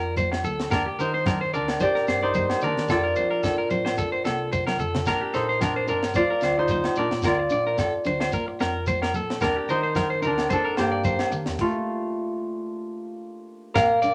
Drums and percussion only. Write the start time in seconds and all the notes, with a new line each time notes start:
0.16 kick, high conga, shekere
0.32 snare, low agogo
0.44 high conga, shekere
0.60 snare
0.71 kick, snare, muted conga, low agogo, shekere
0.99 shekere
1.26 kick, snare, muted conga, high conga, low agogo, shekere
1.54 shekere
1.68 snare, low agogo
1.80 kick, muted conga, high conga, shekere
1.96 snare
2.07 snare, muted conga, low agogo, shekere
2.34 kick, high conga, shekere
2.50 snare, low agogo
2.61 shekere
2.78 snare
2.88 kick, snare, muted conga, low agogo, shekere
3.16 shekere
3.43 kick, snare, muted conga, low agogo, shekere
3.70 high conga, shekere
3.86 snare, low agogo
3.98 kick, muted conga, shekere
4.25 snare, muted conga, low agogo, shekere
4.53 kick, high conga, shekere
4.67 snare, high conga, low agogo
4.79 low conga, shekere
4.95 snare, low conga
5.06 kick, snare, muted conga, low agogo, shekere
5.34 snare, shekere
5.61 kick, snare, muted conga, high conga, low agogo, shekere
5.88 shekere
6.03 snare, low agogo
6.14 kick, muted conga, high conga, shekere
6.41 snare, muted conga, low agogo, shekere
6.68 kick, high conga, shekere
6.84 snare, low agogo
6.95 shekere
7.11 snare
7.22 kick, snare, muted conga, low agogo, shekere
7.50 shekere
7.78 kick, snare, muted conga, low agogo, shekere
8.05 high conga, shekere
8.20 snare, low agogo
8.32 kick, muted conga, shekere
8.60 snare, muted conga, low agogo, shekere
8.86 kick, high conga, shekere
9.02 snare, low agogo
9.14 high conga, shekere
9.30 snare
9.41 kick, snare, muted conga, low agogo, shekere
9.69 shekere
9.95 kick, snare, muted conga, high conga, low agogo, shekere
10.23 shekere
10.38 snare, low agogo
10.50 kick, muted conga, high conga, shekere
10.77 snare, muted conga, low agogo, shekere
11.04 kick, high conga, shekere
11.19 snare, low agogo
11.32 shekere
11.46 snare
11.59 kick, crash
13.75 kick, snare, muted conga, low agogo, shekere
14.02 shekere